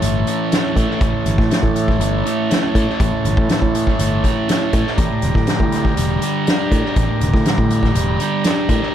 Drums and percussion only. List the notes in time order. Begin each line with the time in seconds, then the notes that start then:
0.02 closed hi-hat
0.27 closed hi-hat
0.52 snare, closed hi-hat
0.76 kick, closed hi-hat
1.01 kick, closed hi-hat
1.26 closed hi-hat
1.38 kick, snare
1.51 snare, closed hi-hat
1.63 kick
1.76 closed hi-hat
1.88 kick
2.01 closed hi-hat
2.26 closed hi-hat
2.51 snare, closed hi-hat
2.75 kick, closed hi-hat
3.00 kick, closed hi-hat
3.25 closed hi-hat
3.37 kick
3.49 snare, closed hi-hat
3.62 kick
3.75 closed hi-hat
3.87 kick
3.99 closed hi-hat
4.24 kick, snare, closed hi-hat
4.49 snare, closed hi-hat
4.73 kick, closed hi-hat
4.87 snare
4.98 kick, closed hi-hat
5.22 closed hi-hat
5.35 kick, snare
5.47 snare, closed hi-hat
5.60 kick
5.72 snare, closed hi-hat
5.85 kick
5.97 closed hi-hat
6.22 closed hi-hat
6.47 snare, closed hi-hat
6.72 kick, closed hi-hat
6.96 kick, closed hi-hat
7.21 closed hi-hat
7.34 kick, snare
7.45 snare, closed hi-hat
7.58 kick
7.70 closed hi-hat
7.83 kick, snare
7.95 closed hi-hat
8.20 closed hi-hat
8.44 snare, closed hi-hat
8.69 kick, closed hi-hat